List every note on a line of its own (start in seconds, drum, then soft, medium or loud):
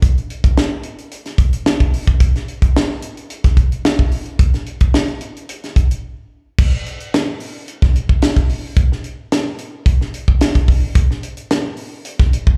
0.02 kick loud
0.02 closed hi-hat loud
0.18 closed hi-hat soft
0.30 closed hi-hat medium
0.44 kick medium
0.44 closed hi-hat medium
0.58 snare loud
0.83 closed hi-hat medium
0.98 closed hi-hat medium
1.11 closed hi-hat medium
1.25 snare soft
1.25 closed hi-hat soft
1.38 kick medium
1.38 closed hi-hat medium
1.53 closed hi-hat medium
1.66 snare loud
1.80 kick medium
1.80 closed hi-hat soft
1.93 open hi-hat medium
2.07 kick medium
2.07 closed hi-hat soft
2.20 kick loud
2.20 closed hi-hat loud
2.35 snare soft
2.35 closed hi-hat soft
2.48 closed hi-hat medium
2.62 kick medium
2.62 closed hi-hat medium
2.76 snare loud
3.02 closed hi-hat medium
3.17 closed hi-hat medium
3.30 closed hi-hat medium
3.44 kick loud
3.44 snare soft
3.44 closed hi-hat soft
3.57 kick medium
3.57 closed hi-hat medium
3.72 closed hi-hat medium
3.85 snare loud
3.99 kick medium
4.11 open hi-hat medium
4.25 closed hi-hat soft
4.39 kick loud
4.39 closed hi-hat loud
4.54 snare soft
4.54 closed hi-hat soft
4.66 closed hi-hat medium
4.80 kick medium
4.80 closed hi-hat medium
4.94 snare loud
5.08 closed hi-hat soft
5.21 closed hi-hat medium
5.37 closed hi-hat soft
5.49 closed hi-hat medium
5.63 snare soft
5.63 closed hi-hat soft
5.76 kick medium
5.76 closed hi-hat medium
5.91 closed hi-hat medium
6.59 kick loud
6.59 crash loud
6.86 closed hi-hat medium
7.00 closed hi-hat medium
7.14 snare loud
7.14 closed hi-hat medium
7.40 open hi-hat medium
7.68 closed hi-hat medium
7.82 kick loud
7.82 snare soft
7.95 closed hi-hat medium
8.09 kick medium
8.22 snare loud
8.22 closed hi-hat loud
8.36 kick medium
8.36 closed hi-hat medium
8.49 open hi-hat medium
8.76 kick loud
8.76 closed hi-hat loud
8.92 snare soft
9.04 closed hi-hat medium
9.32 snare loud
9.32 closed hi-hat loud
9.58 closed hi-hat medium
9.86 kick loud
9.86 closed hi-hat medium
10.01 snare soft
10.14 closed hi-hat medium
10.28 kick medium
10.41 snare loud
10.41 closed hi-hat loud
10.55 kick medium
10.55 closed hi-hat medium
10.68 kick medium
10.68 open hi-hat medium
10.95 kick loud
10.95 closed hi-hat loud
11.11 snare soft
11.23 closed hi-hat medium
11.37 closed hi-hat medium
11.50 snare loud
11.50 closed hi-hat medium
11.77 open hi-hat medium
12.05 closed hi-hat medium
12.20 kick loud
12.20 snare soft
12.33 closed hi-hat medium
12.47 kick loud